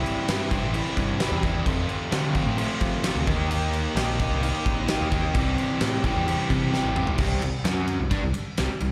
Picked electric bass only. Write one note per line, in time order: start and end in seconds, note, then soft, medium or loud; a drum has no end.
0.29 0.58 G2 loud
0.63 0.83 A1 loud
0.97 1.17 G2 medium
1.32 1.61 E2 loud
1.66 1.86 F2 loud
2.12 2.42 D3 medium
2.46 2.66 A2 medium
2.81 3.11 F3 medium
3.16 3.26 D2 medium
3.28 3.86 D#2 medium
3.95 4.25 A#1 loud
4.31 4.50 C2 loud
4.66 4.85 A#1 loud
5.01 5.30 D#2 loud
5.35 5.54 C2 loud
5.81 6.10 A2 medium
6.16 6.35 E2 medium
6.50 6.79 C3 medium
6.84 7.04 A1 medium
7.18 7.40 C2 medium
7.42 7.63 C2 medium
7.64 7.97 F#2 medium
7.99 8.10 C2 medium
8.11 8.22 G2 loud
8.23 8.34 C2 medium
8.59 8.69 C2 medium
8.70 muted picked electric bass stroke soft
8.81 8.92 C2 medium